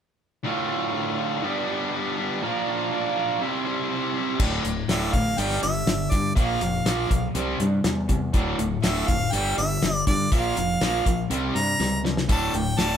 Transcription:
0.43 D2 A2 D3 A3 F4
0.68 D3 A3 F4
0.92 D2 A2 D3 A3 F4
1.18 D3 A3 F4
1.42 G2 D3 G3 B3 D4 G4
1.67 G2 D3 G3 B3 D4 G4
1.92 G3 B3 D4 G4
2.16 G3 B3 D4 G4
2.41 A#2 F3 A#3 D4 F4 A#4
2.66 A#3 D4 F4 A#4
2.90 A#2 F3 A#3 D4 F4 A#4
3.16 A#3 D4 F4 A#4
3.40 C3 G3 C4 E4 G4 C5
3.65 C3 G3 C4 E4 G4 C5
3.90 C4 E4 G4 C5
4.14 C4 E4 G4 C5
4.39 D1 D2 A2 D3, kick, crash
4.64 D1 D2 A2, closed hi-hat
4.89 D1 D2 A2 D3 E5, snare, closed hi-hat
5.13 A1 D2 A2 F5, kick, closed hi-hat
5.38 G1 G2 D3 G3 G5, closed hi-hat
5.50 snare
5.62 G1 G2 D3 E5, closed hi-hat
5.87 G1 G2 D3, snare, closed hi-hat
6.11 G2 D3 D5, kick, closed hi-hat
6.35 A#1 A#2 F3 A#3 F5, kick, closed hi-hat
6.61 F1 A#2 F3, closed hi-hat
6.85 A#1 A#2 F3 A#3, snare, closed hi-hat
7.10 B1 A#2 F3, kick, closed hi-hat
7.35 C2 C3 G3 C4, closed hi-hat
7.60 G2 C3 G3, closed hi-hat
7.84 E2 C3 G3, snare, closed hi-hat
8.09 C3 G3, kick, closed hi-hat
8.33 D1 D2 A2 D3, kick, closed hi-hat
8.58 D1 D2 A2, closed hi-hat
8.82 D1 D2 A2 D3 E5, snare, closed hi-hat
9.07 F1 D2 A2 F5, kick, closed hi-hat
9.32 G1 G2 D3 G3 G5, closed hi-hat
9.57 G1 G2 D3 E5, closed hi-hat
9.82 G1 G2 D3, snare, closed hi-hat
10.07 G2 D3 D5, kick, closed hi-hat
10.32 A#1 A#2 F3 A#3 F5, kick, closed hi-hat
10.56 F1 A#2 F3, closed hi-hat
10.81 A#1 A#2 F3 A#3, snare, closed hi-hat
11.06 A#1 A#2 F3, kick, closed hi-hat
11.30 C2 C3 G3 C4, closed hi-hat
11.55 G2 C3 G3 A#5, closed hi-hat
11.80 C#2 C3 G3, snare
12.04 C3 G3, snare
12.17 snare
12.29 D1 D2 A2 D3 A5, kick, closed hi-hat, splash
12.53 D1 D2 A2, closed hi-hat
12.57 G5
12.77 D1 D2 A2 D3 A5, snare, closed hi-hat

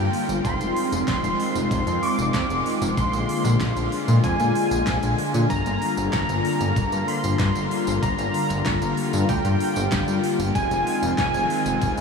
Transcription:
Already playing: D3 G3 A#3 F4 G5
0.13 open hi-hat
0.29 G1, closed hi-hat, tambourine
0.44 F1 D#3 G#3 C4 C6, kick, closed hi-hat, tambourine
0.60 F1, closed hi-hat, tambourine
0.76 open hi-hat
0.92 F1, closed hi-hat, tambourine
1.08 F1 C6, kick, snare, clap, closed hi-hat, tambourine
1.24 F1, closed hi-hat, tambourine
1.40 open hi-hat
1.55 F1, closed hi-hat, tambourine
1.71 F1, kick, closed hi-hat, tambourine
1.87 F2, closed hi-hat, tambourine
2.03 D6, open hi-hat
2.18 F1, closed hi-hat, tambourine
2.34 F2, kick, snare, clap, closed hi-hat, tambourine
2.50 F1, closed hi-hat, tambourine
2.66 open hi-hat
2.82 F1, closed hi-hat, tambourine
2.97 A#1 D3 A#3 F4 C6, kick, closed hi-hat, tambourine
3.13 A#1, closed hi-hat, tambourine
3.29 open hi-hat
3.45 A#1, snare, closed hi-hat, tambourine
3.61 A#1, kick, snare, clap, closed hi-hat, tambourine
3.76 A#1, closed hi-hat, tambourine
3.92 open hi-hat
4.08 A#2, closed hi-hat, tambourine
4.24 F2 G#5, kick, closed hi-hat, tambourine
4.40 A#2, closed hi-hat, tambourine
4.55 open hi-hat
4.71 A#1, closed hi-hat, tambourine
4.87 A#1, kick, snare, clap, closed hi-hat, tambourine
5.03 A#1, closed hi-hat, tambourine
5.18 open hi-hat
5.34 A#2, closed hi-hat, tambourine
5.50 G1 G3 F4 A#5, kick, closed hi-hat, tambourine
5.66 G1, closed hi-hat, tambourine
5.82 open hi-hat
5.97 G1, closed hi-hat, tambourine
6.13 G1 A#5, kick, snare, clap, closed hi-hat, tambourine
6.29 G1, closed hi-hat, tambourine
6.45 open hi-hat
6.61 G1, closed hi-hat, tambourine
6.76 G1, kick, closed hi-hat, tambourine
6.92 G2, closed hi-hat, tambourine
7.08 C6, open hi-hat
7.24 G1, closed hi-hat, tambourine
7.40 G2, kick, snare, clap, closed hi-hat, tambourine
7.55 G1, closed hi-hat, tambourine
7.71 open hi-hat
7.87 G1, closed hi-hat, tambourine
8.02 G1 A#5, kick, closed hi-hat, tambourine
8.18 G1, closed hi-hat, tambourine
8.34 open hi-hat
8.50 G1, snare, closed hi-hat, tambourine
8.66 G1, kick, snare, clap, closed hi-hat, tambourine
8.82 G1, closed hi-hat, tambourine
8.97 open hi-hat
9.13 G2, closed hi-hat, tambourine
9.29 D2 G5, kick, closed hi-hat, tambourine
9.45 G2, closed hi-hat, tambourine
9.60 open hi-hat
9.76 G1, closed hi-hat, tambourine
9.92 G1, kick, snare, clap, closed hi-hat, tambourine
10.08 G2, closed hi-hat, tambourine
10.24 open hi-hat
10.39 G1, closed hi-hat, tambourine
10.55 F1 D#3 G#3 C4 G#5, kick, closed hi-hat, tambourine
10.71 F1, closed hi-hat, tambourine
10.87 open hi-hat
11.02 F1, closed hi-hat, tambourine
11.18 F1 G#5, kick, snare, clap, closed hi-hat, tambourine
11.34 F1, closed hi-hat, tambourine
11.50 open hi-hat
11.66 F1, closed hi-hat, tambourine
11.82 F1, kick, closed hi-hat, tambourine
11.97 F2, closed hi-hat, tambourine

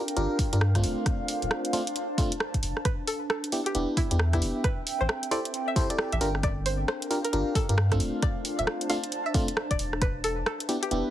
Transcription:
Already playing: D4 A#4 F5 G5
0.08 closed hi-hat
0.17 G1 D4 F4 G4 A#4, closed hi-hat
0.39 kick, open hi-hat
0.53 G2 D4 F4 G4 A#4, closed hi-hat
0.61 cross-stick
0.75 A3 C4 D4 F4, kick, cross-stick, closed hi-hat
0.84 D1, open hi-hat
0.90 C5
1.06 kick, cross-stick, closed hi-hat
1.28 open hi-hat
1.42 D1, closed hi-hat
1.51 A5, cross-stick
1.65 closed hi-hat
1.73 A3 C4 D4 F4, open hi-hat
1.87 closed hi-hat
1.96 closed hi-hat
2.18 A3 C4 D4 F4, kick, open hi-hat
2.32 closed hi-hat
2.40 cross-stick
2.54 kick, closed hi-hat
2.63 F1, open hi-hat
2.77 cross-stick
2.85 B4, kick, cross-stick, closed hi-hat
3.04 A4 B4, open hi-hat
3.28 A4 G5, cross-stick
3.44 E5, closed hi-hat
3.52 B3 D4 E4 G4, open hi-hat
3.66 G4, closed hi-hat
3.75 E1 B3 D4 E4 G4, closed hi-hat
3.97 E4, kick, open hi-hat
4.11 E2 B3 D4 E4 G4, closed hi-hat
4.19 cross-stick
4.33 B3 D4 E4 G4, kick, cross-stick, closed hi-hat
4.42 E1, open hi-hat
4.64 C4 B4, kick, cross-stick, closed hi-hat
4.87 open hi-hat
5.01 A1 A4 C5
5.09 cross-stick
5.23 closed hi-hat
5.31 E4 G4 A4 C5 D5, open hi-hat
5.45 closed hi-hat
5.54 closed hi-hat
5.68 E5
5.76 E4 G4 A4 C5, kick, open hi-hat
5.90 E4 G4 A4 D5, closed hi-hat
5.99 cross-stick
6.12 A1 E5, closed hi-hat
6.21 G1 D4 F4 G4 A#4, open hi-hat
6.34 A#4 F5, cross-stick
6.43 D5, kick, cross-stick, closed hi-hat
6.66 C5, open hi-hat
6.88 C5, cross-stick
7.02 closed hi-hat
7.10 D4 F4 G4 A#4, open hi-hat
7.24 A#4, closed hi-hat
7.33 G1 D4 F4 G4 A#4, closed hi-hat
7.55 A4, kick, open hi-hat
7.69 G2 D4 F4 G4 A#4, closed hi-hat
7.78 cross-stick
7.92 A3 C4 D4 F4 A4, kick, cross-stick, closed hi-hat
8.00 D1, open hi-hat
8.22 C5 D5 A5, kick, cross-stick, closed hi-hat
8.45 open hi-hat
8.59 D1 E5, closed hi-hat
8.67 cross-stick
8.81 closed hi-hat
8.90 A3 C4 D4 F4 F5, open hi-hat
9.04 closed hi-hat
9.12 closed hi-hat
9.26 E5
9.34 A3 C4 D4 F4, kick, open hi-hat
9.48 closed hi-hat
9.57 cross-stick
9.71 D1 D5, kick, closed hi-hat
9.79 E1, open hi-hat
9.93 cross-stick
10.02 B4, kick, cross-stick, closed hi-hat
10.23 A4 B4, open hi-hat
10.36 E5
10.45 A4 G5, cross-stick
10.60 closed hi-hat
10.69 B3 D4 E4 G4, open hi-hat
10.83 G4, closed hi-hat
10.91 E1 B3 D4 E4 G4, closed hi-hat

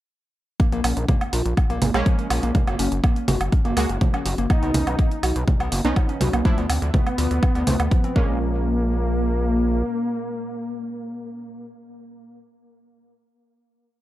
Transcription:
0.60 A#3, kick, closed hi-hat
0.72 A#1 A#3, closed hi-hat
0.84 A#1 C#4, open hi-hat, low woodblock
0.97 A#1, closed hi-hat
1.09 A#3, kick, closed hi-hat, low conga
1.21 closed hi-hat, low woodblock
1.33 A#1 F4, open hi-hat
1.46 A#1, closed hi-hat
1.57 kick, closed hi-hat, low woodblock
1.70 A#1 A#3, closed hi-hat
1.82 G#1 A#3, open hi-hat, low conga
1.94 A#1 G#3 A#3 C#4, closed hi-hat, low woodblock
2.06 F3, kick, closed hi-hat
2.19 C#4, closed hi-hat
2.30 A#1 F4, open hi-hat, low woodblock
2.43 A#1 A#3, closed hi-hat
2.55 A#3, kick, closed hi-hat, low conga
2.67 F#1 A#3, closed hi-hat, low woodblock
2.79 F#1 C#4, open hi-hat
2.92 F#1, closed hi-hat
3.04 A#3, kick, closed hi-hat, low woodblock
3.16 closed hi-hat
3.28 F#1 F#4, open hi-hat, low conga
3.41 F#1, closed hi-hat, low woodblock
3.52 kick, closed hi-hat
3.65 F#1 A#3, closed hi-hat
3.77 C#2 G#3 A#3 F#4, open hi-hat, low woodblock
3.89 F#1, closed hi-hat
4.01 F3, kick, closed hi-hat, low conga
4.14 C#4, closed hi-hat, low woodblock
4.26 F#1 F#4, open hi-hat
4.38 F#1 A#3, closed hi-hat
4.50 A#3 D#4, kick, closed hi-hat, low woodblock
4.63 B1 B3, closed hi-hat
4.74 B1 C#4, open hi-hat, low conga
4.87 B1, closed hi-hat, low woodblock
4.99 A#3, kick, closed hi-hat
5.11 closed hi-hat
5.23 B1 F#4, open hi-hat, low woodblock
5.36 B1, closed hi-hat
5.48 kick, closed hi-hat, low conga
5.60 B1 B3, closed hi-hat, low woodblock
5.72 F#1 A#3, open hi-hat
5.85 B1 B3 C#4 D#4, closed hi-hat
5.96 F3, kick, closed hi-hat, low woodblock
6.09 C#4, closed hi-hat
6.21 B1 F#4, open hi-hat, low conga
6.33 B1 A#3, closed hi-hat, low woodblock
6.45 F3 A3 D4 E4, kick, closed hi-hat
6.58 D2 B3, closed hi-hat
6.69 D2 C4, open hi-hat, low woodblock
6.82 D2, closed hi-hat
6.94 A3 B3, kick, closed hi-hat, low conga
7.07 closed hi-hat, low woodblock
7.18 D2 F4, open hi-hat
7.31 D2, closed hi-hat
7.43 kick, closed hi-hat, low woodblock
7.55 D2 B3, closed hi-hat
7.67 C2 A3, open hi-hat, low conga
7.80 D2, closed hi-hat, low woodblock
7.91 F3, kick, closed hi-hat
8.04 C4, closed hi-hat
8.16 A#1 G#3 A#3 C#4, kick

